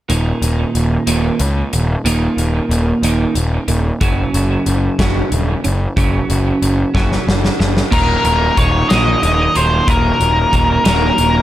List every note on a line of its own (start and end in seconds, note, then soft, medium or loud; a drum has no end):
0.09 0.31 D#1 medium
0.09 1.05 D#2 medium
0.09 1.06 A#2 medium
0.09 1.06 D#3 medium
0.09 closed hi-hat medium
0.42 0.63 D#1 medium
0.42 closed hi-hat medium
0.75 0.96 D#1 medium
0.75 closed hi-hat medium
1.07 1.29 D#1 medium
1.07 1.38 D#2 medium
1.07 1.38 A#2 medium
1.07 1.39 D#3 medium
1.07 closed hi-hat medium
1.40 1.61 C#2 medium
1.40 1.70 D#2 medium
1.40 closed hi-hat medium
1.73 1.95 D#1 medium
1.73 2.02 D#2 soft
1.73 2.02 A#2 medium
1.73 closed hi-hat medium
2.05 2.26 D#1 medium
2.05 3.01 D#2 medium
2.05 3.02 A#2 medium
2.05 3.02 D#3 medium
2.05 closed hi-hat medium
2.37 2.59 D#1 medium
2.37 closed hi-hat medium
2.69 2.91 D#1 medium
2.69 closed hi-hat medium
3.02 3.24 D#1 medium
3.02 3.34 D#2 medium
3.02 3.34 A#2 medium
3.02 3.35 D#3 medium
3.02 closed hi-hat medium
3.35 3.57 D#1 medium
3.35 3.65 D#2 medium
3.35 3.65 A#2 medium
3.35 closed hi-hat medium
3.68 3.89 D#1 medium
3.68 3.98 D#2 medium
3.68 3.98 A#2 medium
3.68 closed hi-hat soft
4.01 4.22 F#1 medium
4.01 4.97 F#2 medium
4.01 4.97 C#3 medium
4.01 4.98 F#3 medium
4.01 kick medium
4.01 closed hi-hat medium
4.34 4.55 F#1 medium
4.34 closed hi-hat medium
4.66 4.88 F#1 medium
4.66 closed hi-hat medium
4.99 5.20 F#1 medium
4.99 5.30 F#2 medium
4.99 5.30 C#3 medium
4.99 5.30 F#3 medium
4.99 kick medium
4.99 snare loud
4.99 closed hi-hat medium
5.32 5.53 D#1 medium
5.32 5.61 F#2 soft
5.32 5.61 C#3 medium
5.32 closed hi-hat medium
5.64 5.86 F#1 medium
5.64 5.94 F#2 medium
5.64 5.94 C#3 medium
5.64 closed hi-hat medium
5.96 6.18 F#1 medium
5.96 6.93 F#2 medium
5.96 6.93 C#3 medium
5.96 6.93 F#3 medium
5.96 kick medium
5.96 closed hi-hat medium
6.30 6.51 F#1 medium
6.30 closed hi-hat medium
6.62 6.83 F#1 medium
6.62 closed hi-hat medium
6.94 7.16 F#1 medium
6.94 7.25 F#2 medium
6.94 7.25 C#3 medium
6.94 7.26 F#3 medium
6.94 kick medium
6.94 snare soft
7.12 snare soft
7.27 7.48 F#1 medium
7.27 7.56 F#2 soft
7.27 7.57 C#3 medium
7.27 snare medium
7.45 snare medium
7.59 7.81 F#1 medium
7.59 7.89 F#2 medium
7.59 7.89 C#3 medium
7.59 snare medium
7.77 snare medium
7.91 8.16 D#1 medium
7.91 8.91 D#2 medium
7.91 8.90 A#2 medium
7.91 8.56 D#3 medium
7.91 8.57 F#3 medium
7.91 8.58 A#3 medium
7.91 8.59 D#4 medium
7.91 8.24 A#4 medium
7.91 kick loud
7.91 crash medium
8.25 8.48 D#1 medium
8.25 8.56 A#4 medium
8.25 closed hi-hat medium
8.56 8.81 D#1 medium
8.56 8.90 D#3 medium
8.56 8.90 F#3 medium
8.56 8.88 A#3 medium
8.56 8.87 D#4 medium
8.56 8.89 C#5 medium
8.56 kick medium
8.56 closed hi-hat medium
8.89 9.14 A#1 medium
8.89 9.85 D#2 medium
8.89 9.86 A#2 medium
8.89 9.56 D#3 medium
8.89 9.56 F#3 medium
8.89 9.54 A#3 medium
8.89 9.53 D#4 medium
8.89 9.22 D#5 medium
8.89 snare medium
8.89 closed hi-hat medium
9.23 9.47 D#1 medium
9.23 9.56 D#5 medium
9.23 closed hi-hat medium
9.54 9.79 D#1 medium
9.54 9.87 D#3 medium
9.54 9.88 F#3 medium
9.54 9.88 A#3 medium
9.54 9.88 D#4 medium
9.54 9.90 C5 medium
9.54 closed hi-hat medium
9.86 10.11 D#1 medium
9.86 10.85 D#2 medium
9.86 10.85 A#2 medium
9.86 10.50 D#3 medium
9.86 10.52 F#3 medium
9.86 10.52 A#3 medium
9.86 10.53 D#4 medium
9.86 10.84 A#4 medium
9.86 kick loud
9.86 closed hi-hat medium
10.20 10.44 D#1 medium
10.20 closed hi-hat medium
10.51 10.77 D#1 medium
10.51 10.85 D#3 medium
10.51 10.85 F#3 medium
10.51 10.83 A#3 medium
10.51 10.83 D#4 medium
10.51 kick medium
10.51 closed hi-hat medium
10.84 11.09 D#1 medium
10.84 11.42 D#2 medium
10.84 11.42 A#2 medium
10.84 11.42 D#3 medium
10.84 11.42 F#3 medium
10.84 11.42 A#3 medium
10.84 11.42 D#4 medium
10.84 11.42 A#4 medium
10.84 snare loud
10.84 closed hi-hat medium
11.18 11.42 D#1 medium
11.18 closed hi-hat medium